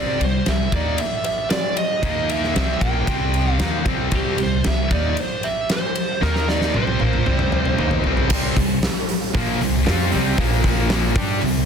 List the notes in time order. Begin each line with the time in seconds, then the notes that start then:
Already playing: C2 C3 G3 C4 D5
0.21 C2 C3 G3 C5, ride
0.46 C2 C3 G3 E5, snare, ride
0.72 D#2 D#3 A#3 D#4 D5, kick, ride
0.98 E5, ride
1.24 E5, ride
1.50 D5, snare, ride
1.77 D#5, ride
2.03 D#2 D#3 A#3 D#4, kick, ride
2.29 E5, ride
2.43 snare
2.56 C2 C3 G3 C4 E5, snare, ride
2.81 A#1 A#2 F3 A#3 G5, kick, ride
3.07 C2 C3 G3 C4, kick, ride
3.34 ride
3.52 F5
3.59 D#2 D#3 A#3 D#4, snare, ride
3.86 C2 C3 G3 C4, kick, ride
4.12 C2 C3 G3 C4, kick, ride
4.16 G4
4.38 C2 C3 G3, ride
4.43 C5
4.64 C2 C3 G3 E5, snare, ride
4.91 D#2 D#3 A#3 D#4 D5, kick, ride
5.17 C5, ride
5.43 E5, ride
5.70 C5, snare, ride
5.95 ride
6.21 D#2 D#3 A#3 D#4 A#4, snare
6.36 snare
6.49 D5, snare
6.61 snare
6.74 C2 C3 G3 C4 C5, high tom
6.87 high tom
7.00 A#1 A#2 F3 A#3, high tom
7.13 mid tom
7.26 C2 C3 G3 C4, mid tom
7.39 mid tom
7.52 mid tom
7.65 mid tom
7.79 D#2 D#3 A#3 D#4, mid tom
7.91 floor tom
8.04 C2 C3 G3 C4, floor tom
8.17 floor tom
8.30 C2 C3 G3 C4, kick, crash
8.56 C2 C3 G3, kick, open hi-hat
8.83 snare, open hi-hat
9.09 open hi-hat
9.35 A#1 A#2 F3 A#3, kick, open hi-hat
9.61 C2 C3 G3, snare, open hi-hat
9.86 F2 F3 C4 F4, snare, open hi-hat
10.12 C2 C3 G3 C4, open hi-hat
10.38 A#1 A#2 F3 A#3, kick, open hi-hat
10.64 kick, open hi-hat
10.90 snare, open hi-hat
11.15 G2 G3 D4 G4, kick, open hi-hat
11.41 C2 C3 G3, open hi-hat